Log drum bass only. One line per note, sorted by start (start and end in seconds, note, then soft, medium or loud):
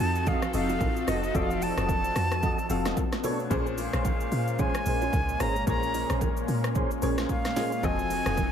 0.00 0.37 F2 loud
0.54 0.77 F1 medium
0.81 1.04 A1 loud
1.08 1.31 F1 loud
1.35 1.72 F1 loud
1.77 2.11 F1 loud
2.16 2.53 F2 loud
2.70 2.94 F1 medium
3.51 3.88 A#1 loud
3.93 4.27 A#1 loud
4.32 4.69 A#2 loud
4.86 5.10 A#1 medium
5.13 5.37 C#2 loud
5.40 5.64 G#1 medium
5.67 6.05 A#1 loud
6.10 6.44 A#1 loud
6.48 6.86 A#2 loud
7.02 7.26 A#1 loud
7.83 8.21 F1 loud
8.26 8.52 F1 loud